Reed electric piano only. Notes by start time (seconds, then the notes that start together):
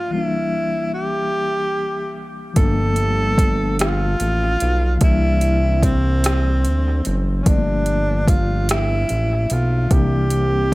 Already playing: D4
0.09 C2 E3
0.13 G3 A#3
0.17 D4
2.54 F3 A3
2.60 A#3 D4
4.98 E3 G3
5.04 A#3 D4
7.44 F3 A3
7.49 A#3 C4
7.59 D4
9.88 E3 G3
9.94 A#3 D4